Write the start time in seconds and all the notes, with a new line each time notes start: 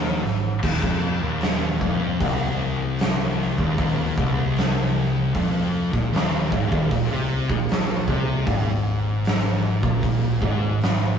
Already playing: D#2 D#3
0.06 snare
0.23 G#1 G#2, snare
0.63 D#1 D#2, kick, crash
0.82 F1 F2, kick
1.21 D#1 D#2
1.41 snare, open hi-hat
1.81 F1 F2, kick
2.20 C1 C2, kick, open hi-hat
2.99 snare, open hi-hat
3.41 snare
3.58 D#1 D#2, kick
3.78 kick, open hi-hat
4.17 C1 C2, kick
4.56 snare, open hi-hat
5.35 F1 F2, kick, open hi-hat
5.93 A#1 A#2, kick
6.12 D#1 D#2, open hi-hat
6.16 snare
6.52 G#1 G#2, kick, snare
6.72 D#1 D#2, kick
6.91 A#1 A#2, kick, open hi-hat
7.10 C2 C3
7.49 A#1 A#2, kick
7.69 snare, open hi-hat
8.07 C2 C3, kick
8.46 G#1 G#2, kick, open hi-hat
9.25 snare, open hi-hat
9.47 snare
9.83 A#1 A#2, kick
10.03 kick, open hi-hat
10.41 G#1 G#2, kick
10.81 snare, open hi-hat